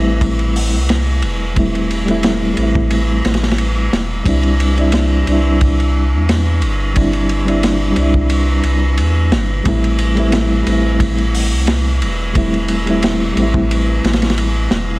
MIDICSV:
0, 0, Header, 1, 4, 480
1, 0, Start_track
1, 0, Key_signature, 0, "minor"
1, 0, Tempo, 674157
1, 1110, Time_signature, 4, 2, 24, 8
1, 10673, End_track
2, 0, Start_track
2, 0, Title_t, "Reed electric piano"
2, 0, Program_c, 0, 4
2, 0, Control_c, 0, 64, 127
2, 0, Note_on_c, 0, 55, 68
2, 0, Note_on_c, 0, 57, 62
2, 0, Note_on_c, 0, 60, 67
2, 0, Note_on_c, 0, 64, 77
2, 1068, Note_off_c, 0, 55, 0
2, 1080, Note_off_c, 0, 57, 0
2, 1092, Note_off_c, 0, 60, 0
2, 1098, Note_on_c, 0, 55, 79
2, 1104, Note_off_c, 0, 64, 0
2, 1111, Note_on_c, 0, 57, 70
2, 1121, Note_on_c, 0, 60, 70
2, 1133, Note_on_c, 0, 64, 85
2, 1441, Note_off_c, 0, 55, 0
2, 1447, Note_off_c, 0, 57, 0
2, 1452, Note_off_c, 0, 60, 0
2, 1458, Note_off_c, 0, 64, 0
2, 1464, Note_on_c, 0, 55, 88
2, 1477, Note_on_c, 0, 57, 80
2, 1489, Note_on_c, 0, 60, 73
2, 1502, Note_on_c, 0, 64, 93
2, 1796, Note_off_c, 0, 55, 0
2, 1803, Note_off_c, 0, 57, 0
2, 1806, Note_on_c, 0, 55, 72
2, 1809, Note_off_c, 0, 60, 0
2, 1815, Note_off_c, 0, 64, 0
2, 1829, Note_on_c, 0, 57, 69
2, 1852, Note_on_c, 0, 60, 64
2, 1873, Note_on_c, 0, 64, 81
2, 2991, Note_off_c, 0, 55, 0
2, 3002, Note_off_c, 0, 57, 0
2, 3014, Note_off_c, 0, 60, 0
2, 3023, Note_on_c, 0, 55, 84
2, 3024, Note_off_c, 0, 64, 0
2, 3031, Note_on_c, 0, 60, 75
2, 3037, Control_c, 0, 64, 0
2, 3040, Note_on_c, 0, 62, 74
2, 3056, Note_on_c, 0, 64, 85
2, 3148, Control_c, 0, 64, 127
2, 3363, Note_off_c, 0, 55, 0
2, 3367, Note_off_c, 0, 60, 0
2, 3372, Note_off_c, 0, 62, 0
2, 3380, Note_off_c, 0, 64, 0
2, 3389, Note_on_c, 0, 55, 85
2, 3398, Note_on_c, 0, 60, 75
2, 3410, Note_on_c, 0, 62, 78
2, 3424, Note_on_c, 0, 64, 87
2, 3713, Note_off_c, 0, 55, 0
2, 3722, Note_on_c, 0, 55, 70
2, 3723, Note_off_c, 0, 60, 0
2, 3729, Note_off_c, 0, 62, 0
2, 3736, Note_off_c, 0, 64, 0
2, 3745, Note_on_c, 0, 60, 66
2, 3767, Note_on_c, 0, 62, 67
2, 3791, Note_on_c, 0, 64, 81
2, 4909, Note_off_c, 0, 55, 0
2, 4920, Note_off_c, 0, 60, 0
2, 4932, Note_off_c, 0, 62, 0
2, 4938, Note_on_c, 0, 55, 82
2, 4943, Note_off_c, 0, 64, 0
2, 4949, Note_on_c, 0, 60, 70
2, 4962, Note_on_c, 0, 62, 74
2, 4971, Note_on_c, 0, 64, 88
2, 5281, Note_off_c, 0, 55, 0
2, 5286, Note_off_c, 0, 60, 0
2, 5293, Note_off_c, 0, 62, 0
2, 5297, Note_off_c, 0, 64, 0
2, 5307, Note_on_c, 0, 55, 82
2, 5316, Note_on_c, 0, 60, 79
2, 5326, Note_on_c, 0, 62, 71
2, 5338, Note_on_c, 0, 64, 97
2, 5634, Note_off_c, 0, 55, 0
2, 5642, Note_off_c, 0, 60, 0
2, 5643, Note_on_c, 0, 55, 70
2, 5647, Note_off_c, 0, 62, 0
2, 5653, Note_off_c, 0, 64, 0
2, 5665, Note_on_c, 0, 60, 65
2, 5689, Note_on_c, 0, 62, 68
2, 5712, Note_on_c, 0, 64, 80
2, 6829, Note_off_c, 0, 55, 0
2, 6840, Note_off_c, 0, 60, 0
2, 6852, Note_off_c, 0, 62, 0
2, 6861, Note_on_c, 0, 55, 76
2, 6864, Note_off_c, 0, 64, 0
2, 6874, Note_on_c, 0, 57, 73
2, 6878, Control_c, 0, 64, 0
2, 6884, Note_on_c, 0, 60, 71
2, 6896, Note_on_c, 0, 64, 87
2, 7006, Control_c, 0, 64, 127
2, 7202, Note_off_c, 0, 55, 0
2, 7209, Note_off_c, 0, 57, 0
2, 7214, Note_off_c, 0, 60, 0
2, 7220, Note_off_c, 0, 64, 0
2, 7226, Note_on_c, 0, 55, 84
2, 7236, Note_on_c, 0, 57, 72
2, 7250, Note_on_c, 0, 60, 79
2, 7260, Note_on_c, 0, 64, 91
2, 7557, Note_off_c, 0, 55, 0
2, 7562, Note_off_c, 0, 57, 0
2, 7566, Note_on_c, 0, 55, 72
2, 7569, Note_off_c, 0, 60, 0
2, 7574, Note_off_c, 0, 64, 0
2, 7591, Note_on_c, 0, 57, 66
2, 7611, Note_on_c, 0, 60, 68
2, 7633, Note_on_c, 0, 64, 79
2, 8751, Note_off_c, 0, 55, 0
2, 8763, Note_off_c, 0, 57, 0
2, 8773, Note_off_c, 0, 60, 0
2, 8781, Note_on_c, 0, 55, 79
2, 8784, Note_off_c, 0, 64, 0
2, 8792, Note_on_c, 0, 57, 70
2, 8804, Note_on_c, 0, 60, 71
2, 8812, Note_on_c, 0, 64, 89
2, 9122, Note_off_c, 0, 55, 0
2, 9128, Note_off_c, 0, 57, 0
2, 9134, Note_off_c, 0, 60, 0
2, 9138, Note_off_c, 0, 64, 0
2, 9155, Note_on_c, 0, 55, 84
2, 9167, Note_on_c, 0, 57, 77
2, 9178, Note_on_c, 0, 60, 78
2, 9188, Note_on_c, 0, 64, 92
2, 9480, Note_off_c, 0, 55, 0
2, 9488, Note_off_c, 0, 57, 0
2, 9488, Note_on_c, 0, 55, 76
2, 9493, Note_off_c, 0, 60, 0
2, 9498, Note_off_c, 0, 64, 0
2, 9514, Note_on_c, 0, 57, 66
2, 9537, Note_on_c, 0, 60, 68
2, 9559, Note_on_c, 0, 64, 80
2, 10672, Note_off_c, 0, 55, 0
2, 10673, Note_off_c, 0, 57, 0
2, 10673, Note_off_c, 0, 60, 0
2, 10673, Note_off_c, 0, 64, 0
2, 10673, End_track
3, 0, Start_track
3, 0, Title_t, "Sub bass"
3, 0, Program_c, 1, 38
3, 0, Note_on_c, 1, 33, 95
3, 523, Note_on_c, 1, 36, 84
3, 534, Note_off_c, 1, 33, 0
3, 874, Note_on_c, 1, 28, 85
3, 884, Note_off_c, 1, 36, 0
3, 1810, Note_off_c, 1, 28, 0
3, 1832, Note_on_c, 1, 33, 93
3, 2290, Note_off_c, 1, 33, 0
3, 2315, Note_on_c, 1, 33, 86
3, 2771, Note_off_c, 1, 33, 0
3, 2793, Note_on_c, 1, 28, 83
3, 3005, Note_off_c, 1, 28, 0
3, 3033, Note_on_c, 1, 36, 98
3, 3730, Note_off_c, 1, 36, 0
3, 3755, Note_on_c, 1, 36, 91
3, 4368, Note_on_c, 1, 40, 78
3, 4379, Note_off_c, 1, 36, 0
3, 4711, Note_on_c, 1, 31, 85
3, 4722, Note_off_c, 1, 40, 0
3, 5649, Note_off_c, 1, 31, 0
3, 5673, Note_on_c, 1, 36, 91
3, 6130, Note_off_c, 1, 36, 0
3, 6151, Note_on_c, 1, 36, 86
3, 6398, Note_on_c, 1, 40, 93
3, 6409, Note_off_c, 1, 36, 0
3, 6633, Note_on_c, 1, 31, 93
3, 6644, Note_off_c, 1, 40, 0
3, 6845, Note_off_c, 1, 31, 0
3, 6875, Note_on_c, 1, 33, 96
3, 7571, Note_off_c, 1, 33, 0
3, 7596, Note_on_c, 1, 33, 96
3, 8200, Note_on_c, 1, 36, 83
3, 8210, Note_off_c, 1, 33, 0
3, 8558, Note_on_c, 1, 28, 85
3, 8569, Note_off_c, 1, 36, 0
3, 9492, Note_off_c, 1, 28, 0
3, 9513, Note_on_c, 1, 33, 99
3, 9970, Note_off_c, 1, 33, 0
3, 9995, Note_on_c, 1, 33, 86
3, 10451, Note_off_c, 1, 33, 0
3, 10476, Note_on_c, 1, 28, 84
3, 10673, Note_off_c, 1, 28, 0
3, 10673, End_track
4, 0, Start_track
4, 0, Title_t, "Drums"
4, 150, Note_on_c, 9, 36, 108
4, 150, Note_on_c, 9, 51, 89
4, 222, Note_off_c, 9, 36, 0
4, 222, Note_off_c, 9, 51, 0
4, 278, Note_on_c, 9, 51, 40
4, 349, Note_off_c, 9, 51, 0
4, 398, Note_on_c, 9, 46, 69
4, 470, Note_off_c, 9, 46, 0
4, 633, Note_on_c, 9, 51, 81
4, 641, Note_on_c, 9, 38, 111
4, 705, Note_off_c, 9, 51, 0
4, 712, Note_off_c, 9, 38, 0
4, 871, Note_on_c, 9, 51, 65
4, 942, Note_off_c, 9, 51, 0
4, 1112, Note_on_c, 9, 51, 79
4, 1115, Note_on_c, 9, 36, 97
4, 1184, Note_off_c, 9, 51, 0
4, 1186, Note_off_c, 9, 36, 0
4, 1246, Note_on_c, 9, 51, 39
4, 1317, Note_off_c, 9, 51, 0
4, 1357, Note_on_c, 9, 51, 57
4, 1428, Note_off_c, 9, 51, 0
4, 1481, Note_on_c, 9, 51, 38
4, 1552, Note_off_c, 9, 51, 0
4, 1588, Note_on_c, 9, 51, 82
4, 1597, Note_on_c, 9, 38, 109
4, 1659, Note_off_c, 9, 51, 0
4, 1669, Note_off_c, 9, 38, 0
4, 1829, Note_on_c, 9, 51, 63
4, 1900, Note_off_c, 9, 51, 0
4, 1961, Note_on_c, 9, 36, 99
4, 2032, Note_off_c, 9, 36, 0
4, 2069, Note_on_c, 9, 51, 79
4, 2140, Note_off_c, 9, 51, 0
4, 2312, Note_on_c, 9, 51, 64
4, 2319, Note_on_c, 9, 38, 80
4, 2376, Note_off_c, 9, 51, 0
4, 2376, Note_on_c, 9, 51, 67
4, 2385, Note_off_c, 9, 38, 0
4, 2385, Note_on_c, 9, 38, 77
4, 2445, Note_off_c, 9, 38, 0
4, 2445, Note_on_c, 9, 38, 80
4, 2447, Note_off_c, 9, 51, 0
4, 2447, Note_on_c, 9, 51, 57
4, 2501, Note_off_c, 9, 51, 0
4, 2501, Note_on_c, 9, 51, 56
4, 2505, Note_off_c, 9, 38, 0
4, 2505, Note_on_c, 9, 38, 81
4, 2549, Note_off_c, 9, 51, 0
4, 2549, Note_on_c, 9, 51, 82
4, 2576, Note_off_c, 9, 38, 0
4, 2621, Note_off_c, 9, 51, 0
4, 2799, Note_on_c, 9, 38, 98
4, 2799, Note_on_c, 9, 51, 65
4, 2870, Note_off_c, 9, 38, 0
4, 2870, Note_off_c, 9, 51, 0
4, 3030, Note_on_c, 9, 36, 106
4, 3032, Note_on_c, 9, 51, 91
4, 3101, Note_off_c, 9, 36, 0
4, 3103, Note_off_c, 9, 51, 0
4, 3156, Note_on_c, 9, 51, 38
4, 3227, Note_off_c, 9, 51, 0
4, 3275, Note_on_c, 9, 51, 65
4, 3346, Note_off_c, 9, 51, 0
4, 3401, Note_on_c, 9, 51, 39
4, 3472, Note_off_c, 9, 51, 0
4, 3503, Note_on_c, 9, 51, 89
4, 3515, Note_on_c, 9, 38, 113
4, 3574, Note_off_c, 9, 51, 0
4, 3586, Note_off_c, 9, 38, 0
4, 3753, Note_on_c, 9, 51, 60
4, 3824, Note_off_c, 9, 51, 0
4, 3993, Note_on_c, 9, 51, 76
4, 3997, Note_on_c, 9, 36, 102
4, 4064, Note_off_c, 9, 51, 0
4, 4068, Note_off_c, 9, 36, 0
4, 4128, Note_on_c, 9, 51, 43
4, 4199, Note_off_c, 9, 51, 0
4, 4478, Note_on_c, 9, 51, 81
4, 4482, Note_on_c, 9, 38, 100
4, 4550, Note_off_c, 9, 51, 0
4, 4553, Note_off_c, 9, 38, 0
4, 4712, Note_on_c, 9, 51, 64
4, 4783, Note_off_c, 9, 51, 0
4, 4953, Note_on_c, 9, 51, 77
4, 4959, Note_on_c, 9, 36, 93
4, 5024, Note_off_c, 9, 51, 0
4, 5030, Note_off_c, 9, 36, 0
4, 5077, Note_on_c, 9, 51, 39
4, 5148, Note_off_c, 9, 51, 0
4, 5191, Note_on_c, 9, 51, 55
4, 5263, Note_off_c, 9, 51, 0
4, 5325, Note_on_c, 9, 51, 42
4, 5397, Note_off_c, 9, 51, 0
4, 5433, Note_on_c, 9, 51, 88
4, 5440, Note_on_c, 9, 38, 115
4, 5504, Note_off_c, 9, 51, 0
4, 5511, Note_off_c, 9, 38, 0
4, 5667, Note_on_c, 9, 51, 60
4, 5739, Note_off_c, 9, 51, 0
4, 5797, Note_on_c, 9, 36, 78
4, 5868, Note_off_c, 9, 36, 0
4, 5907, Note_on_c, 9, 51, 88
4, 5978, Note_off_c, 9, 51, 0
4, 6148, Note_on_c, 9, 51, 58
4, 6219, Note_off_c, 9, 51, 0
4, 6390, Note_on_c, 9, 51, 75
4, 6461, Note_off_c, 9, 51, 0
4, 6635, Note_on_c, 9, 51, 66
4, 6636, Note_on_c, 9, 38, 112
4, 6706, Note_off_c, 9, 51, 0
4, 6707, Note_off_c, 9, 38, 0
4, 6873, Note_on_c, 9, 51, 81
4, 6876, Note_on_c, 9, 36, 106
4, 6944, Note_off_c, 9, 51, 0
4, 6947, Note_off_c, 9, 36, 0
4, 7006, Note_on_c, 9, 51, 43
4, 7077, Note_off_c, 9, 51, 0
4, 7110, Note_on_c, 9, 51, 61
4, 7181, Note_off_c, 9, 51, 0
4, 7239, Note_on_c, 9, 51, 39
4, 7311, Note_off_c, 9, 51, 0
4, 7349, Note_on_c, 9, 51, 78
4, 7357, Note_on_c, 9, 38, 112
4, 7420, Note_off_c, 9, 51, 0
4, 7429, Note_off_c, 9, 38, 0
4, 7594, Note_on_c, 9, 51, 66
4, 7665, Note_off_c, 9, 51, 0
4, 7832, Note_on_c, 9, 36, 101
4, 7832, Note_on_c, 9, 51, 88
4, 7903, Note_off_c, 9, 36, 0
4, 7903, Note_off_c, 9, 51, 0
4, 7962, Note_on_c, 9, 51, 39
4, 8033, Note_off_c, 9, 51, 0
4, 8078, Note_on_c, 9, 46, 69
4, 8149, Note_off_c, 9, 46, 0
4, 8310, Note_on_c, 9, 51, 85
4, 8316, Note_on_c, 9, 38, 115
4, 8382, Note_off_c, 9, 51, 0
4, 8387, Note_off_c, 9, 38, 0
4, 8557, Note_on_c, 9, 51, 70
4, 8628, Note_off_c, 9, 51, 0
4, 8794, Note_on_c, 9, 51, 86
4, 8796, Note_on_c, 9, 36, 98
4, 8865, Note_off_c, 9, 51, 0
4, 8867, Note_off_c, 9, 36, 0
4, 8926, Note_on_c, 9, 51, 41
4, 8997, Note_off_c, 9, 51, 0
4, 9030, Note_on_c, 9, 51, 66
4, 9101, Note_off_c, 9, 51, 0
4, 9163, Note_on_c, 9, 51, 42
4, 9234, Note_off_c, 9, 51, 0
4, 9274, Note_on_c, 9, 51, 95
4, 9285, Note_on_c, 9, 38, 125
4, 9345, Note_off_c, 9, 51, 0
4, 9356, Note_off_c, 9, 38, 0
4, 9519, Note_on_c, 9, 51, 60
4, 9590, Note_off_c, 9, 51, 0
4, 9643, Note_on_c, 9, 36, 87
4, 9714, Note_off_c, 9, 36, 0
4, 9762, Note_on_c, 9, 51, 82
4, 9833, Note_off_c, 9, 51, 0
4, 10000, Note_on_c, 9, 51, 58
4, 10008, Note_on_c, 9, 38, 78
4, 10062, Note_off_c, 9, 51, 0
4, 10062, Note_on_c, 9, 51, 60
4, 10069, Note_off_c, 9, 38, 0
4, 10069, Note_on_c, 9, 38, 89
4, 10124, Note_off_c, 9, 51, 0
4, 10124, Note_on_c, 9, 51, 61
4, 10131, Note_off_c, 9, 38, 0
4, 10131, Note_on_c, 9, 38, 83
4, 10179, Note_off_c, 9, 51, 0
4, 10179, Note_on_c, 9, 51, 62
4, 10183, Note_off_c, 9, 38, 0
4, 10183, Note_on_c, 9, 38, 89
4, 10235, Note_off_c, 9, 51, 0
4, 10235, Note_on_c, 9, 51, 87
4, 10254, Note_off_c, 9, 38, 0
4, 10307, Note_off_c, 9, 51, 0
4, 10473, Note_on_c, 9, 38, 99
4, 10476, Note_on_c, 9, 51, 61
4, 10544, Note_off_c, 9, 38, 0
4, 10547, Note_off_c, 9, 51, 0
4, 10673, End_track
0, 0, End_of_file